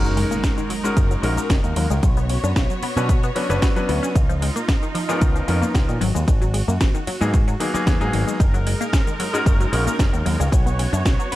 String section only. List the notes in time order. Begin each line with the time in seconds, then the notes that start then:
Already playing: G#3 D#4 A#4
2.02 B3 F#4 C#5
4.15 D#4 F4
6.01 F#4
8.40 G#3 D#4 A#4
10.52 B3 F#4 C#5